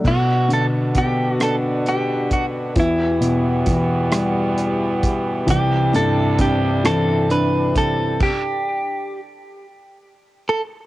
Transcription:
<<
  \new Staff \with { instrumentName = "Clean electric guitar" } { \time 6/8 \key c \lydian \tempo 4. = 44 fis'8 a'8 g'8 a'8 g'8 fis'8 | e'4 r2 | g'8 a'8 g'8 a'8 b'8 a'8 | g'4 r4. a'8 | }
  \new Staff \with { instrumentName = "French horn section" } { \time 6/8 \key c \lydian << { fis'2. | g'2.~ | g'2. | r2. | } \\ { <b, d d' b'>2. | <e, e b fis'>2. | <c, c d' e'>2. | r2. | } >> }
  \new Staff \with { instrumentName = "Steel-string acoustic guitar" } { \time 6/8 \key c \lydian r2. | r2. | e8 c'8 d'8 c'8 d'8 c'8 | r2. | }
  \new Staff \with { instrumentName = "Felt piano" } { \clef bass \time 6/8 \key c \lydian b,8 d8 b8 d'4. | e,8 b,8 e8 g4. | c,8 g,8 c8 e4. | r2. | }
  \new DrumStaff \with { instrumentName = "Drums" } \drummode { \time 6/8 <cymc bd>8 hh8 <hh bd>8 <hh ss>8 hh8 <hh bd>8 | <hh bd>8 hh8 <hh bd>8 <hh ss>8 hh8 <hh bd>8 | <hh bd>8 hh8 <hh bd>8 <hh ss>8 hh8 <hh bd>8 | <cymc bd>4. r4. | }
>>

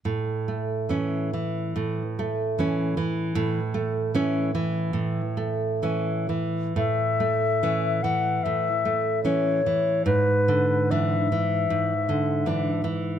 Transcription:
<<
  \new Staff \with { instrumentName = "Flute" } { \time 4/4 \key a \major \tempo 4 = 74 r1 | r1 | e''4. fis''8 e''4 cis''4 | b'4 e''2~ e''8 r8 | }
  \new Staff \with { instrumentName = "Nylon-string guitar" } { \clef bass \time 4/4 \key a \major a,8 a8 <e cis'>8 e8 a,8 a8 <e cis'>8 e8 | a,8 a8 <e cis'>8 e8 a,8 a8 <e cis'>8 e8 | a,8 a8 <e cis'>8 e8 a,8 a8 <e cis'>8 e8 | gis,8 d8 <e d'>8 e8 gis,8 d8 <e d'>8 e8 | }
>>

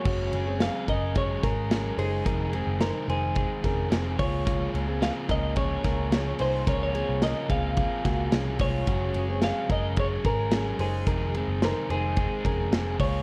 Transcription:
<<
  \new Staff \with { instrumentName = "Clean electric guitar" } { \time 4/4 \key ges \lydian \tempo 4 = 109 des''4 f''8 ees''8 des''8 bes'4 aes'8~ | aes'4 bes'8 aes'2 des''8~ | des''8 r8 f''8 ees''8 des''4. c''8 | des''16 des''8. ees''8 f''2 des''8~ |
des''4 f''8 ees''8 des''8 bes'4 aes'8~ | aes'4 bes'8 aes'2 des''8 | }
  \new Staff \with { instrumentName = "Clean electric guitar" } { \time 4/4 \key ges \lydian <des' ges'>8. <c' aes'>8. <des' bes'>8 <des' aes'>8 <des' bes'>8 <des' aes'>8 <ees' c''>8 | <ees' bes'>8 <c' aes'>8 <ees' c''>8 <ees' c''>4 <des' bes'>8 <c' aes'>8 <aes f'>8 | <aes f'>8. <c' aes'>8. <des' bes'>8 <des' aes'>8 <des' bes'>8 <des' aes'>8 <ees' c''>8 | <des' bes'>8 <c' aes'>8 <des' bes'>8 <c' aes'>4 <bes ges'>8 <des' aes'>8 <aes f'>8 |
<des' ges'>8. <c' aes'>8. <des' bes'>8 <des' aes'>8 <des' bes'>8 <des' aes'>8 <ees' c''>8 | <ees' bes'>8 <c' aes'>8 <ees' c''>8 <ees' c''>4 <des' bes'>8 <c' aes'>8 <aes f'>8 | }
  \new Staff \with { instrumentName = "Overdriven electric guitar" } { \time 4/4 \key ges \lydian <ges aes des' aes'>8 <aes des' aes'>8 <ges aes des' aes'>8 <aes des' aes'>8 <ges aes des' aes'>8 <aes des' aes'>8 <ges aes des' aes'>8 <aes des' aes'>8 | <f, c ees aes c' aes'>8 <ees aes c' aes'>8 <f, c ees aes c' aes'>8 <ees aes c' aes'>8 <ees aes c' aes'>8 <ees aes c' aes'>8 <f, c ees aes c' aes'>8 <bes f' aes'>8 | <des f bes f' aes'>8 <bes f' aes'>8 <des f bes f' aes'>8 <bes f' aes'>8 <f bes f' aes'>8 <bes f' aes'>8 <des f bes f' aes'>8 <bes f' aes'>8 | <des f bes f' aes'>8 <bes f' aes'>8 <des f bes f' aes'>8 <bes f' aes'>8 <f bes f' aes'>8 <bes f' aes'>8 <des f bes f' aes'>8 <bes f' aes'>8 |
<ges aes des' aes'>8 <aes des' aes'>8 <ges aes des' aes'>8 <aes des' aes'>8 <ges aes des' aes'>8 <aes des' aes'>8 <ges aes des' aes'>8 <aes des' aes'>8 | <f, c ees aes c' aes'>8 <ees aes c' aes'>8 <f, c ees aes c' aes'>8 <ees aes c' aes'>8 <ees aes c' aes'>8 <ees aes c' aes'>8 <f, c ees aes c' aes'>8 <bes f' aes'>8 | }
  \new Staff \with { instrumentName = "Picked electric bass" } { \clef bass \time 4/4 \key ges \lydian ges,,8 ges,,8. r16 ges,,4 aes,,4 ges,,8 | f,,8. ges,,8 r16 f,,8. r16 f,,8 f,,8 des,8~ | des,8 des,8. r16 des,4 des,4 c,8 | des,8. c,8 r16 des,8. r16 des,8 c,8 c,8 |
ges,,8 ges,,8. r16 ges,,4 aes,,4 ges,,8 | f,,8. ges,,8 r16 f,,8. r16 f,,8 f,,8 des,8 | }
  \new DrumStaff \with { instrumentName = "Drums" } \drummode { \time 4/4 <cymc bd>8 cymr8 <cymr sn>8 <bd cymr>8 <bd cymr>8 <bd cymr sn>8 <cymr sn>8 <hho cymr>8 | <hhp bd cymr>8 cymr8 <cymr sn>8 cymr8 <bd cymr>8 <bd cymr sn>8 <cymr sn>8 <hho bd cymr>8 | <hhp bd cymr>8 cymr8 <cymr sn>8 <bd cymr>8 <bd cymr>8 <bd cymr sn>8 <cymr sn>8 <hho cymr>8 | <hhp bd cymr>8 cymr8 <cymr sn>8 <bd cymr>8 <bd cymr>8 <bd cymr sn>8 <cymr sn>8 <hho bd cymr>8 |
<hhp bd cymr>8 cymr8 <cymr sn>8 <bd cymr>8 <bd cymr>8 <bd cymr>8 <cymr sn>8 <hho cymr>8 | <hhp bd cymr>8 cymr8 <cymr sn>8 cymr8 <bd cymr>8 <bd cymr>8 <cymr sn>8 <hho bd cymr>8 | }
>>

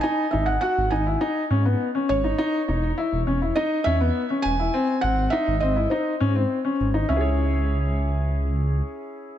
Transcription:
<<
  \new Staff \with { instrumentName = "Felt piano" } { \time 4/4 \key cis \minor \tempo 4 = 102 gis''8 e''16 fis''16 fis''8 gis''4 r4 cis''8~ | cis''2 dis''8 e''4 gis''8~ | gis''8 fis''8 e''8 dis''8 bis'4. r8 | e''1 | }
  \new Staff \with { instrumentName = "Upright piano" } { \time 4/4 \key cis \minor dis'8 dis'8 fis'8 dis'16 e'16 dis'8 cis'16 b8 cis'8 dis'16 | dis'8 dis'8 e'8 cis'16 e'16 dis'8 cis'16 b8 cis'8 e'16 | bis8 bis8 dis'8 bis16 e'16 dis'8 cis'16 bis8 cis'8 dis'16 | <cis' e' gis' cis''>1 | }
  \new Staff \with { instrumentName = "Detuned saw bass" } { \clef bass \time 4/4 \key cis \minor r8 gis,,8 r16 gis,,16 gis,,8 r8 gis,8 r8 gis,,8 | r8 e,,8 r16 e,,16 e,,8 r8 e,8 r8 e,,8 | r8 gis,,8 r16 gis,,16 gis,,8 r8 gis,8 r8 gis,,8 | cis,2. r4 | }
>>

